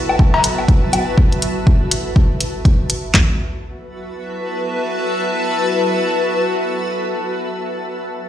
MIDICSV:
0, 0, Header, 1, 3, 480
1, 0, Start_track
1, 0, Key_signature, 3, "minor"
1, 0, Tempo, 491803
1, 1147, Time_signature, 4, 2, 24, 8
1, 8088, End_track
2, 0, Start_track
2, 0, Title_t, "Ambient pad"
2, 0, Program_c, 0, 92
2, 0, Note_on_c, 0, 66, 72
2, 0, Note_on_c, 0, 71, 76
2, 0, Note_on_c, 0, 76, 91
2, 0, Note_on_c, 0, 81, 73
2, 1146, Note_off_c, 0, 71, 0
2, 1147, Note_off_c, 0, 66, 0
2, 1147, Note_off_c, 0, 76, 0
2, 1147, Note_off_c, 0, 81, 0
2, 3068, Note_on_c, 0, 66, 76
2, 3149, Note_on_c, 0, 71, 72
2, 3227, Note_on_c, 0, 76, 73
2, 3284, Note_on_c, 0, 81, 73
2, 6978, Note_off_c, 0, 66, 0
2, 7059, Note_off_c, 0, 71, 0
2, 7137, Note_off_c, 0, 76, 0
2, 7194, Note_off_c, 0, 81, 0
2, 8088, End_track
3, 0, Start_track
3, 0, Title_t, "Drums"
3, 92, Note_on_c, 9, 77, 80
3, 188, Note_on_c, 9, 36, 113
3, 189, Note_off_c, 9, 77, 0
3, 285, Note_off_c, 9, 36, 0
3, 331, Note_on_c, 9, 56, 91
3, 428, Note_on_c, 9, 42, 88
3, 429, Note_off_c, 9, 56, 0
3, 526, Note_off_c, 9, 42, 0
3, 571, Note_on_c, 9, 77, 44
3, 668, Note_on_c, 9, 36, 116
3, 668, Note_on_c, 9, 42, 37
3, 669, Note_off_c, 9, 77, 0
3, 765, Note_off_c, 9, 36, 0
3, 766, Note_off_c, 9, 42, 0
3, 908, Note_on_c, 9, 77, 75
3, 909, Note_on_c, 9, 42, 87
3, 1006, Note_off_c, 9, 77, 0
3, 1007, Note_off_c, 9, 42, 0
3, 1148, Note_on_c, 9, 36, 116
3, 1245, Note_off_c, 9, 36, 0
3, 1293, Note_on_c, 9, 42, 36
3, 1388, Note_off_c, 9, 42, 0
3, 1388, Note_on_c, 9, 42, 87
3, 1486, Note_off_c, 9, 42, 0
3, 1628, Note_on_c, 9, 36, 121
3, 1725, Note_off_c, 9, 36, 0
3, 1868, Note_on_c, 9, 42, 93
3, 1966, Note_off_c, 9, 42, 0
3, 2108, Note_on_c, 9, 36, 112
3, 2205, Note_off_c, 9, 36, 0
3, 2347, Note_on_c, 9, 42, 84
3, 2445, Note_off_c, 9, 42, 0
3, 2588, Note_on_c, 9, 36, 117
3, 2588, Note_on_c, 9, 42, 35
3, 2685, Note_off_c, 9, 36, 0
3, 2686, Note_off_c, 9, 42, 0
3, 2827, Note_on_c, 9, 42, 82
3, 2925, Note_off_c, 9, 42, 0
3, 3067, Note_on_c, 9, 36, 94
3, 3068, Note_on_c, 9, 39, 83
3, 3068, Note_on_c, 9, 43, 95
3, 3165, Note_off_c, 9, 36, 0
3, 3165, Note_off_c, 9, 39, 0
3, 3165, Note_off_c, 9, 43, 0
3, 8088, End_track
0, 0, End_of_file